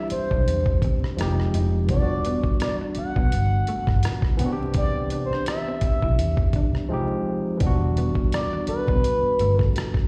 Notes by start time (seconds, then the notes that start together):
Already playing: E3 G3 C4 D4 G4
0.10 C5, muted fingered electric bass stroke, muted clean electric guitar stroke, closed hi-hat
0.31 B1 D4, kick
0.47 E2, closed hi-hat
0.66 kick
0.82 C4, kick, closed hi-hat
1.02 C2, cross-stick
1.17 F1 F3 G#3 C4 D#4, closed hi-hat
1.21 G4, cross-stick
1.40 cross-stick
1.54 F1 D#4, closed hi-hat
1.86 E1 E3 G3 D5, kick, closed hi-hat
1.91 B3 D4
1.96 F4
2.02 F#4
2.25 B3, closed hi-hat
2.44 muted fingered electric bass stroke, kick
2.60 D5, cross-stick, closed hi-hat
2.81 D4
2.95 F#5, muted fingered electric bass stroke, closed hi-hat
2.99 muted clean electric guitar stroke
3.16 B1 B3, kick
3.32 G1, closed hi-hat
3.67 A3, closed hi-hat
3.87 G1, kick, cross-stick
4.03 muted clean electric guitar stroke, cross-stick, closed hi-hat
4.22 kick, cross-stick
4.37 C2 E3 B3, closed hi-hat
4.41 B3 C4 D4
4.46 F#4
4.52 G4
4.61 C4
4.74 D5, kick, closed hi-hat
5.10 D4, closed hi-hat
5.25 C5
5.30 muted fingered electric bass stroke, cross-stick
5.46 E5, cross-stick, closed hi-hat
5.68 C4
5.81 muted fingered electric bass stroke, muted clean electric guitar stroke, kick, closed hi-hat
6.02 B1 E4, kick
6.18 E2, closed hi-hat
6.37 kick
6.53 D4, kick, closed hi-hat
6.73 C2, cross-stick
6.89 F3 G#3 C4 D#4
6.93 G4
7.57 E3 G3, kick, closed hi-hat
7.61 E1 B3 D4
7.67 F#4
7.81 high conga
7.96 B3, closed hi-hat, high conga
8.15 muted fingered electric bass stroke, kick
8.32 D5, cross-stick, closed hi-hat
8.52 D4, high conga
8.67 B4, muted fingered electric bass stroke, muted clean electric guitar stroke, closed hi-hat, muted conga
8.87 B1 B3, kick, low conga
9.04 closed hi-hat
9.23 muted fingered electric bass stroke
9.39 G1 A3, closed hi-hat, high conga
9.59 A4, kick, cross-stick
9.76 muted clean electric guitar stroke, cross-stick, closed hi-hat, muted conga
9.94 kick, cross-stick, high conga